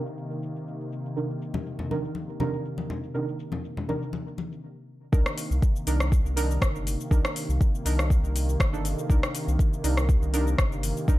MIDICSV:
0, 0, Header, 1, 5, 480
1, 0, Start_track
1, 0, Key_signature, -3, "minor"
1, 0, Tempo, 495868
1, 1124, Time_signature, 4, 2, 24, 8
1, 10831, End_track
2, 0, Start_track
2, 0, Title_t, "Synth stab"
2, 0, Program_c, 0, 62
2, 0, Note_on_c, 0, 48, 78
2, 0, Note_on_c, 0, 62, 69
2, 0, Note_on_c, 0, 63, 67
2, 0, Note_on_c, 0, 70, 86
2, 1095, Note_off_c, 0, 48, 0
2, 1096, Note_off_c, 0, 62, 0
2, 1097, Note_off_c, 0, 63, 0
2, 1097, Note_off_c, 0, 70, 0
2, 1125, Note_on_c, 0, 70, 79
2, 1126, Note_on_c, 0, 48, 75
2, 1126, Note_on_c, 0, 62, 65
2, 1128, Note_on_c, 0, 63, 64
2, 1818, Note_off_c, 0, 48, 0
2, 1818, Note_off_c, 0, 62, 0
2, 1818, Note_off_c, 0, 70, 0
2, 1819, Note_off_c, 0, 63, 0
2, 1846, Note_on_c, 0, 48, 77
2, 1846, Note_on_c, 0, 62, 71
2, 1846, Note_on_c, 0, 63, 72
2, 1847, Note_on_c, 0, 70, 89
2, 2298, Note_off_c, 0, 48, 0
2, 2298, Note_off_c, 0, 62, 0
2, 2298, Note_off_c, 0, 63, 0
2, 2299, Note_off_c, 0, 70, 0
2, 2323, Note_on_c, 0, 48, 93
2, 2324, Note_on_c, 0, 63, 88
2, 2325, Note_on_c, 0, 62, 85
2, 2325, Note_on_c, 0, 70, 100
2, 3017, Note_off_c, 0, 48, 0
2, 3017, Note_off_c, 0, 62, 0
2, 3017, Note_off_c, 0, 63, 0
2, 3017, Note_off_c, 0, 70, 0
2, 3043, Note_on_c, 0, 62, 69
2, 3043, Note_on_c, 0, 63, 72
2, 3044, Note_on_c, 0, 48, 81
2, 3044, Note_on_c, 0, 70, 84
2, 3736, Note_off_c, 0, 63, 0
2, 3737, Note_off_c, 0, 48, 0
2, 3737, Note_off_c, 0, 62, 0
2, 3737, Note_off_c, 0, 70, 0
2, 3761, Note_on_c, 0, 70, 86
2, 3762, Note_on_c, 0, 48, 79
2, 3763, Note_on_c, 0, 62, 72
2, 3763, Note_on_c, 0, 63, 72
2, 4483, Note_off_c, 0, 48, 0
2, 4483, Note_off_c, 0, 62, 0
2, 4483, Note_off_c, 0, 63, 0
2, 4483, Note_off_c, 0, 70, 0
2, 4959, Note_on_c, 0, 62, 75
2, 4959, Note_on_c, 0, 70, 83
2, 4960, Note_on_c, 0, 63, 69
2, 5654, Note_off_c, 0, 62, 0
2, 5655, Note_off_c, 0, 63, 0
2, 5655, Note_off_c, 0, 70, 0
2, 5681, Note_on_c, 0, 62, 82
2, 5681, Note_on_c, 0, 70, 91
2, 5682, Note_on_c, 0, 63, 75
2, 6136, Note_off_c, 0, 62, 0
2, 6136, Note_off_c, 0, 63, 0
2, 6136, Note_off_c, 0, 70, 0
2, 6160, Note_on_c, 0, 63, 86
2, 6160, Note_on_c, 0, 70, 109
2, 6161, Note_on_c, 0, 62, 95
2, 6855, Note_off_c, 0, 62, 0
2, 6855, Note_off_c, 0, 63, 0
2, 6855, Note_off_c, 0, 70, 0
2, 6879, Note_on_c, 0, 63, 74
2, 6879, Note_on_c, 0, 70, 91
2, 6880, Note_on_c, 0, 62, 81
2, 7574, Note_off_c, 0, 63, 0
2, 7575, Note_off_c, 0, 62, 0
2, 7575, Note_off_c, 0, 70, 0
2, 7601, Note_on_c, 0, 63, 72
2, 7602, Note_on_c, 0, 62, 80
2, 7602, Note_on_c, 0, 70, 90
2, 8425, Note_off_c, 0, 62, 0
2, 8425, Note_off_c, 0, 63, 0
2, 8425, Note_off_c, 0, 70, 0
2, 8449, Note_on_c, 0, 63, 70
2, 8450, Note_on_c, 0, 62, 76
2, 8450, Note_on_c, 0, 69, 86
2, 8776, Note_off_c, 0, 62, 0
2, 8776, Note_off_c, 0, 63, 0
2, 8776, Note_off_c, 0, 69, 0
2, 8803, Note_on_c, 0, 62, 75
2, 8803, Note_on_c, 0, 63, 69
2, 8804, Note_on_c, 0, 70, 84
2, 9496, Note_off_c, 0, 62, 0
2, 9496, Note_off_c, 0, 63, 0
2, 9497, Note_off_c, 0, 70, 0
2, 9521, Note_on_c, 0, 62, 82
2, 9523, Note_on_c, 0, 63, 75
2, 9523, Note_on_c, 0, 70, 89
2, 9976, Note_off_c, 0, 62, 0
2, 9976, Note_off_c, 0, 63, 0
2, 9976, Note_off_c, 0, 70, 0
2, 10004, Note_on_c, 0, 62, 94
2, 10004, Note_on_c, 0, 63, 90
2, 10004, Note_on_c, 0, 70, 103
2, 10697, Note_off_c, 0, 62, 0
2, 10697, Note_off_c, 0, 63, 0
2, 10697, Note_off_c, 0, 70, 0
2, 10725, Note_on_c, 0, 70, 87
2, 10727, Note_on_c, 0, 62, 82
2, 10727, Note_on_c, 0, 63, 76
2, 10831, Note_off_c, 0, 62, 0
2, 10831, Note_off_c, 0, 63, 0
2, 10831, Note_off_c, 0, 70, 0
2, 10831, End_track
3, 0, Start_track
3, 0, Title_t, "Analog synth pad"
3, 0, Program_c, 1, 89
3, 0, Note_on_c, 1, 48, 77
3, 0, Note_on_c, 1, 51, 85
3, 0, Note_on_c, 1, 58, 69
3, 4446, Note_off_c, 1, 58, 0
3, 4447, Note_off_c, 1, 48, 0
3, 4447, Note_off_c, 1, 51, 0
3, 4958, Note_on_c, 1, 48, 82
3, 4960, Note_on_c, 1, 51, 91
3, 4963, Note_on_c, 1, 58, 78
3, 10831, Note_off_c, 1, 48, 0
3, 10831, Note_off_c, 1, 51, 0
3, 10831, Note_off_c, 1, 58, 0
3, 10831, End_track
4, 0, Start_track
4, 0, Title_t, "Analog synth bass"
4, 0, Program_c, 2, 38
4, 4965, Note_on_c, 2, 36, 105
4, 5071, Note_off_c, 2, 36, 0
4, 5332, Note_on_c, 2, 36, 99
4, 5425, Note_off_c, 2, 36, 0
4, 5684, Note_on_c, 2, 36, 95
4, 6018, Note_off_c, 2, 36, 0
4, 6051, Note_on_c, 2, 36, 82
4, 6374, Note_off_c, 2, 36, 0
4, 6406, Note_on_c, 2, 31, 86
4, 6739, Note_off_c, 2, 31, 0
4, 6883, Note_on_c, 2, 36, 100
4, 6990, Note_off_c, 2, 36, 0
4, 7251, Note_on_c, 2, 36, 97
4, 7345, Note_off_c, 2, 36, 0
4, 7604, Note_on_c, 2, 36, 98
4, 7938, Note_off_c, 2, 36, 0
4, 7971, Note_on_c, 2, 36, 84
4, 8294, Note_off_c, 2, 36, 0
4, 8324, Note_on_c, 2, 31, 92
4, 8658, Note_off_c, 2, 31, 0
4, 8805, Note_on_c, 2, 36, 102
4, 8911, Note_off_c, 2, 36, 0
4, 9174, Note_on_c, 2, 36, 98
4, 9267, Note_off_c, 2, 36, 0
4, 9526, Note_on_c, 2, 36, 98
4, 9859, Note_off_c, 2, 36, 0
4, 9895, Note_on_c, 2, 36, 88
4, 10216, Note_off_c, 2, 36, 0
4, 10246, Note_on_c, 2, 31, 90
4, 10579, Note_off_c, 2, 31, 0
4, 10726, Note_on_c, 2, 36, 101
4, 10831, Note_off_c, 2, 36, 0
4, 10831, End_track
5, 0, Start_track
5, 0, Title_t, "Drums"
5, 61, Note_on_c, 9, 82, 38
5, 158, Note_off_c, 9, 82, 0
5, 170, Note_on_c, 9, 82, 54
5, 267, Note_off_c, 9, 82, 0
5, 300, Note_on_c, 9, 82, 25
5, 397, Note_off_c, 9, 82, 0
5, 413, Note_on_c, 9, 82, 89
5, 509, Note_off_c, 9, 82, 0
5, 544, Note_on_c, 9, 82, 39
5, 641, Note_off_c, 9, 82, 0
5, 655, Note_on_c, 9, 82, 54
5, 752, Note_off_c, 9, 82, 0
5, 781, Note_on_c, 9, 82, 26
5, 878, Note_off_c, 9, 82, 0
5, 894, Note_on_c, 9, 82, 85
5, 990, Note_off_c, 9, 82, 0
5, 1023, Note_on_c, 9, 82, 40
5, 1120, Note_off_c, 9, 82, 0
5, 1133, Note_on_c, 9, 82, 53
5, 1229, Note_off_c, 9, 82, 0
5, 1260, Note_on_c, 9, 82, 27
5, 1357, Note_off_c, 9, 82, 0
5, 1372, Note_on_c, 9, 82, 91
5, 1469, Note_off_c, 9, 82, 0
5, 1491, Note_on_c, 9, 63, 90
5, 1492, Note_on_c, 9, 64, 95
5, 1588, Note_off_c, 9, 63, 0
5, 1589, Note_off_c, 9, 64, 0
5, 1609, Note_on_c, 9, 82, 54
5, 1706, Note_off_c, 9, 82, 0
5, 1732, Note_on_c, 9, 64, 101
5, 1740, Note_on_c, 9, 82, 26
5, 1829, Note_off_c, 9, 64, 0
5, 1837, Note_off_c, 9, 82, 0
5, 1849, Note_on_c, 9, 63, 93
5, 1852, Note_on_c, 9, 82, 94
5, 1946, Note_off_c, 9, 63, 0
5, 1949, Note_off_c, 9, 82, 0
5, 1980, Note_on_c, 9, 82, 40
5, 2077, Note_off_c, 9, 82, 0
5, 2080, Note_on_c, 9, 63, 84
5, 2091, Note_on_c, 9, 82, 52
5, 2177, Note_off_c, 9, 63, 0
5, 2187, Note_off_c, 9, 82, 0
5, 2218, Note_on_c, 9, 82, 27
5, 2314, Note_off_c, 9, 82, 0
5, 2322, Note_on_c, 9, 64, 87
5, 2325, Note_on_c, 9, 63, 95
5, 2326, Note_on_c, 9, 82, 91
5, 2419, Note_off_c, 9, 64, 0
5, 2421, Note_off_c, 9, 63, 0
5, 2423, Note_off_c, 9, 82, 0
5, 2457, Note_on_c, 9, 82, 40
5, 2553, Note_off_c, 9, 82, 0
5, 2567, Note_on_c, 9, 82, 56
5, 2664, Note_off_c, 9, 82, 0
5, 2689, Note_on_c, 9, 63, 100
5, 2695, Note_on_c, 9, 82, 26
5, 2786, Note_off_c, 9, 63, 0
5, 2792, Note_off_c, 9, 82, 0
5, 2807, Note_on_c, 9, 64, 103
5, 2809, Note_on_c, 9, 82, 90
5, 2904, Note_off_c, 9, 64, 0
5, 2906, Note_off_c, 9, 82, 0
5, 2938, Note_on_c, 9, 82, 39
5, 3035, Note_off_c, 9, 82, 0
5, 3050, Note_on_c, 9, 82, 52
5, 3146, Note_off_c, 9, 82, 0
5, 3178, Note_on_c, 9, 82, 27
5, 3274, Note_off_c, 9, 82, 0
5, 3287, Note_on_c, 9, 82, 95
5, 3384, Note_off_c, 9, 82, 0
5, 3405, Note_on_c, 9, 63, 85
5, 3411, Note_on_c, 9, 64, 90
5, 3418, Note_on_c, 9, 82, 38
5, 3502, Note_off_c, 9, 63, 0
5, 3507, Note_off_c, 9, 64, 0
5, 3514, Note_off_c, 9, 82, 0
5, 3529, Note_on_c, 9, 82, 52
5, 3626, Note_off_c, 9, 82, 0
5, 3652, Note_on_c, 9, 64, 102
5, 3654, Note_on_c, 9, 82, 27
5, 3749, Note_off_c, 9, 64, 0
5, 3751, Note_off_c, 9, 82, 0
5, 3765, Note_on_c, 9, 63, 85
5, 3765, Note_on_c, 9, 82, 93
5, 3862, Note_off_c, 9, 63, 0
5, 3862, Note_off_c, 9, 82, 0
5, 3895, Note_on_c, 9, 82, 39
5, 3991, Note_off_c, 9, 82, 0
5, 3998, Note_on_c, 9, 63, 101
5, 4010, Note_on_c, 9, 82, 55
5, 4094, Note_off_c, 9, 63, 0
5, 4107, Note_off_c, 9, 82, 0
5, 4139, Note_on_c, 9, 82, 25
5, 4236, Note_off_c, 9, 82, 0
5, 4241, Note_on_c, 9, 63, 95
5, 4248, Note_on_c, 9, 82, 86
5, 4338, Note_off_c, 9, 63, 0
5, 4344, Note_off_c, 9, 82, 0
5, 4378, Note_on_c, 9, 82, 39
5, 4474, Note_off_c, 9, 82, 0
5, 4964, Note_on_c, 9, 36, 124
5, 4969, Note_on_c, 9, 82, 54
5, 5060, Note_off_c, 9, 36, 0
5, 5065, Note_off_c, 9, 82, 0
5, 5092, Note_on_c, 9, 37, 94
5, 5097, Note_on_c, 9, 82, 27
5, 5189, Note_off_c, 9, 37, 0
5, 5194, Note_off_c, 9, 82, 0
5, 5203, Note_on_c, 9, 46, 94
5, 5208, Note_on_c, 9, 82, 95
5, 5300, Note_off_c, 9, 46, 0
5, 5305, Note_off_c, 9, 82, 0
5, 5337, Note_on_c, 9, 82, 39
5, 5434, Note_off_c, 9, 82, 0
5, 5444, Note_on_c, 9, 36, 106
5, 5448, Note_on_c, 9, 82, 54
5, 5541, Note_off_c, 9, 36, 0
5, 5544, Note_off_c, 9, 82, 0
5, 5575, Note_on_c, 9, 82, 27
5, 5672, Note_off_c, 9, 82, 0
5, 5682, Note_on_c, 9, 46, 84
5, 5687, Note_on_c, 9, 82, 99
5, 5778, Note_off_c, 9, 46, 0
5, 5783, Note_off_c, 9, 82, 0
5, 5812, Note_on_c, 9, 37, 86
5, 5817, Note_on_c, 9, 82, 39
5, 5908, Note_off_c, 9, 37, 0
5, 5913, Note_off_c, 9, 82, 0
5, 5924, Note_on_c, 9, 36, 119
5, 5930, Note_on_c, 9, 82, 57
5, 6021, Note_off_c, 9, 36, 0
5, 6027, Note_off_c, 9, 82, 0
5, 6060, Note_on_c, 9, 82, 26
5, 6157, Note_off_c, 9, 82, 0
5, 6166, Note_on_c, 9, 46, 94
5, 6171, Note_on_c, 9, 82, 93
5, 6263, Note_off_c, 9, 46, 0
5, 6268, Note_off_c, 9, 82, 0
5, 6301, Note_on_c, 9, 82, 42
5, 6398, Note_off_c, 9, 82, 0
5, 6405, Note_on_c, 9, 36, 102
5, 6407, Note_on_c, 9, 37, 101
5, 6412, Note_on_c, 9, 82, 55
5, 6502, Note_off_c, 9, 36, 0
5, 6504, Note_off_c, 9, 37, 0
5, 6509, Note_off_c, 9, 82, 0
5, 6539, Note_on_c, 9, 82, 26
5, 6636, Note_off_c, 9, 82, 0
5, 6649, Note_on_c, 9, 46, 82
5, 6654, Note_on_c, 9, 82, 90
5, 6746, Note_off_c, 9, 46, 0
5, 6751, Note_off_c, 9, 82, 0
5, 6781, Note_on_c, 9, 82, 41
5, 6878, Note_off_c, 9, 82, 0
5, 6884, Note_on_c, 9, 36, 127
5, 6893, Note_on_c, 9, 82, 55
5, 6981, Note_off_c, 9, 36, 0
5, 6990, Note_off_c, 9, 82, 0
5, 7015, Note_on_c, 9, 37, 102
5, 7020, Note_on_c, 9, 82, 28
5, 7112, Note_off_c, 9, 37, 0
5, 7117, Note_off_c, 9, 82, 0
5, 7125, Note_on_c, 9, 46, 95
5, 7130, Note_on_c, 9, 82, 98
5, 7222, Note_off_c, 9, 46, 0
5, 7227, Note_off_c, 9, 82, 0
5, 7259, Note_on_c, 9, 82, 41
5, 7355, Note_off_c, 9, 82, 0
5, 7364, Note_on_c, 9, 36, 113
5, 7369, Note_on_c, 9, 82, 56
5, 7461, Note_off_c, 9, 36, 0
5, 7466, Note_off_c, 9, 82, 0
5, 7501, Note_on_c, 9, 82, 29
5, 7598, Note_off_c, 9, 82, 0
5, 7606, Note_on_c, 9, 46, 78
5, 7611, Note_on_c, 9, 82, 97
5, 7703, Note_off_c, 9, 46, 0
5, 7708, Note_off_c, 9, 82, 0
5, 7736, Note_on_c, 9, 37, 86
5, 7741, Note_on_c, 9, 82, 44
5, 7832, Note_off_c, 9, 37, 0
5, 7837, Note_off_c, 9, 82, 0
5, 7844, Note_on_c, 9, 36, 124
5, 7852, Note_on_c, 9, 82, 60
5, 7941, Note_off_c, 9, 36, 0
5, 7949, Note_off_c, 9, 82, 0
5, 7980, Note_on_c, 9, 82, 28
5, 8077, Note_off_c, 9, 82, 0
5, 8089, Note_on_c, 9, 46, 91
5, 8094, Note_on_c, 9, 82, 94
5, 8186, Note_off_c, 9, 46, 0
5, 8191, Note_off_c, 9, 82, 0
5, 8220, Note_on_c, 9, 82, 42
5, 8317, Note_off_c, 9, 82, 0
5, 8325, Note_on_c, 9, 36, 113
5, 8329, Note_on_c, 9, 37, 102
5, 8334, Note_on_c, 9, 82, 55
5, 8421, Note_off_c, 9, 36, 0
5, 8425, Note_off_c, 9, 37, 0
5, 8430, Note_off_c, 9, 82, 0
5, 8461, Note_on_c, 9, 82, 28
5, 8558, Note_off_c, 9, 82, 0
5, 8567, Note_on_c, 9, 46, 75
5, 8571, Note_on_c, 9, 82, 94
5, 8663, Note_off_c, 9, 46, 0
5, 8668, Note_off_c, 9, 82, 0
5, 8699, Note_on_c, 9, 82, 43
5, 8796, Note_off_c, 9, 82, 0
5, 8805, Note_on_c, 9, 36, 123
5, 8812, Note_on_c, 9, 82, 60
5, 8902, Note_off_c, 9, 36, 0
5, 8909, Note_off_c, 9, 82, 0
5, 8937, Note_on_c, 9, 37, 97
5, 8942, Note_on_c, 9, 82, 29
5, 9034, Note_off_c, 9, 37, 0
5, 9039, Note_off_c, 9, 82, 0
5, 9047, Note_on_c, 9, 46, 91
5, 9052, Note_on_c, 9, 82, 96
5, 9144, Note_off_c, 9, 46, 0
5, 9149, Note_off_c, 9, 82, 0
5, 9181, Note_on_c, 9, 82, 42
5, 9278, Note_off_c, 9, 82, 0
5, 9285, Note_on_c, 9, 36, 109
5, 9295, Note_on_c, 9, 82, 57
5, 9382, Note_off_c, 9, 36, 0
5, 9392, Note_off_c, 9, 82, 0
5, 9422, Note_on_c, 9, 82, 29
5, 9519, Note_off_c, 9, 82, 0
5, 9527, Note_on_c, 9, 46, 75
5, 9532, Note_on_c, 9, 82, 103
5, 9623, Note_off_c, 9, 46, 0
5, 9628, Note_off_c, 9, 82, 0
5, 9655, Note_on_c, 9, 37, 84
5, 9660, Note_on_c, 9, 82, 44
5, 9752, Note_off_c, 9, 37, 0
5, 9757, Note_off_c, 9, 82, 0
5, 9765, Note_on_c, 9, 36, 127
5, 9768, Note_on_c, 9, 82, 60
5, 9862, Note_off_c, 9, 36, 0
5, 9865, Note_off_c, 9, 82, 0
5, 9898, Note_on_c, 9, 82, 29
5, 9994, Note_off_c, 9, 82, 0
5, 10006, Note_on_c, 9, 46, 87
5, 10011, Note_on_c, 9, 82, 97
5, 10103, Note_off_c, 9, 46, 0
5, 10108, Note_off_c, 9, 82, 0
5, 10138, Note_on_c, 9, 82, 42
5, 10235, Note_off_c, 9, 82, 0
5, 10246, Note_on_c, 9, 36, 115
5, 10246, Note_on_c, 9, 37, 99
5, 10251, Note_on_c, 9, 82, 57
5, 10342, Note_off_c, 9, 36, 0
5, 10343, Note_off_c, 9, 37, 0
5, 10348, Note_off_c, 9, 82, 0
5, 10380, Note_on_c, 9, 82, 28
5, 10476, Note_off_c, 9, 82, 0
5, 10486, Note_on_c, 9, 46, 75
5, 10491, Note_on_c, 9, 82, 97
5, 10583, Note_off_c, 9, 46, 0
5, 10588, Note_off_c, 9, 82, 0
5, 10618, Note_on_c, 9, 82, 42
5, 10715, Note_off_c, 9, 82, 0
5, 10725, Note_on_c, 9, 36, 127
5, 10730, Note_on_c, 9, 82, 60
5, 10822, Note_off_c, 9, 36, 0
5, 10827, Note_off_c, 9, 82, 0
5, 10831, End_track
0, 0, End_of_file